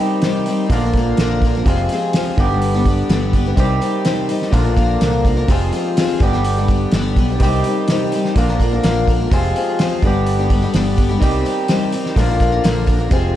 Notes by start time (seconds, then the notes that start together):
Already playing: C3 D#3 G3 C4 G4
0.00 G3 C4 D#4 G4
0.22 C3 G3 C4 D#4 G4, snare, open hi-hat
0.46 G3 C4 D#4 G4, open hi-hat
0.70 A#1 A#2 D3 F3 A#3 D4 F4 A#4, kick, open hi-hat
0.85 F3 A#3 D4 A#4
0.93 F3 A#3, kick, open hi-hat
0.99 D4 A#4
1.17 A#1 A#2 D3 F3 A#3 D4 A#4, snare, open hi-hat
1.42 F3 A#3 D4, kick, open hi-hat
1.46 A#4
1.55 F3 A#3 D4 A#4
1.64 F1 F2 C3 F3 G#3, kick, open hi-hat
1.68 C4 F4 G#4
1.89 F3 C4 F4, open hi-hat
1.94 G#4
2.13 F3 C4 F4 G#4, snare, open hi-hat
2.36 G1 G2 D3 G3 B3 D4, kick, open hi-hat
2.40 G4
2.50 G3 B3 D4 G4
2.62 open hi-hat
2.74 G3 B3 D4 G4
2.85 G3 B3 D4 G4, kick, open hi-hat
3.10 G1 G2 D3 G3 B3 D4 G4, snare, open hi-hat
3.33 G3 B3 D4 G4, kick, open hi-hat
3.46 G3 B3 D4 G4
3.57 C2 C3 D#3 G3 C4 D#4 G4, kick, open hi-hat
3.81 G3 C4 D#4 G4, open hi-hat
4.05 C3 G3 C4 D#4 G4, snare, open hi-hat
4.29 G3 C4 D#4 G4, open hi-hat
4.42 snare
4.53 A#1 A#2 D3 F3 A#3 D4 F4 A#4, kick, open hi-hat
4.65 F3 A#3 D4 A#4
4.76 F3 A#3 D4 A#4, kick, open hi-hat
5.01 C2 A#2 D3 F3 A#3 D4 A#4, snare, open hi-hat
5.25 F3 A#3 D4 A#4, kick, open hi-hat
5.37 F3 A#3 D4 A#4
5.47 F1 F2 C3 F3 G#3 C4 F4 G#4, kick, open hi-hat
5.73 F3 C4 F4 G#4, open hi-hat
5.97 F3 C4 F4 G#4, snare, open hi-hat
6.19 G1 G2 D3 G3 B3 D4, kick, open hi-hat
6.23 G4
6.33 G3 B3 D4 G4, snare
6.44 open hi-hat
6.57 G3 B3 D4 G4
6.68 G3 B3 D4 G4, kick, open hi-hat
6.92 G1 G2 D3 G3 B3 D4 G4, snare, open hi-hat
7.16 B1 G3 B3 D4 G4, kick, open hi-hat
7.30 G3 B3 D4 G4
7.40 C2 C3 D#3 G3 C4 D#4, kick, open hi-hat
7.45 G4
7.64 G3 C4 D#4, open hi-hat
7.68 G4
7.88 C3 G3 C4 D#4 G4, snare, open hi-hat
8.12 G3 C4 D#4 G4, open hi-hat
8.25 snare
8.36 A#1 A#2 D3 F3 A#3 D4 F4 A#4, kick, open hi-hat
8.48 F3 A#3 D4 A#4, snare
8.60 F3 A#3 D4 A#4, kick, open hi-hat
8.72 F3 A#3 D4 A#4
8.84 A#1 A#2 D3 F3 A#3 D4 A#4, snare, open hi-hat
9.08 F3 A#3 D4 A#4, kick, open hi-hat
9.20 F3 A#3 D4 A#4
9.30 F1 F2 C3 F3 G#3 C4 F4 G#4, kick, open hi-hat
9.56 F3 C4 F4 G#4, open hi-hat
9.79 F3 C4 F4 G#4, snare, open hi-hat
10.03 G1 G2 D3 G3 B3 D4 G4, kick, open hi-hat
10.27 open hi-hat
10.39 G3 B3 D4 G4
10.50 G3 B3 D4 G4, kick, open hi-hat
10.62 G3 B3 D4 G4
10.74 G1 G2 D3 G3 B3 D4 G4, snare, open hi-hat
10.97 G3 B3 D4 G4, kick, open hi-hat
11.09 G3 B3 D4 G4
11.21 C2 C3 D#3 G3 C4 D#4 G4, kick, open hi-hat
11.45 G3 C4 D#4 G4, open hi-hat
11.68 C3 G3 C4 D#4 G4, snare, open hi-hat
11.92 G3 C4 D#4 G4, open hi-hat
12.06 snare
12.16 A#1 A#2 D3 F3 A#3 D4 F4 A#4, kick, open hi-hat
12.29 F3 A#3 D4 A#4
12.40 F3 A#3 D4 A#4, kick, open hi-hat
12.52 F3 A#3 D4 A#4
12.64 A#1 A#2 D3 F3 A#3 D4 A#4, snare, open hi-hat
12.86 F3 A#3 D4 A#4, kick, open hi-hat
12.99 F3 A#3 D4 A#4
13.09 F1 F2 C3 F3 G#3 C4 F4 G#4, kick, open hi-hat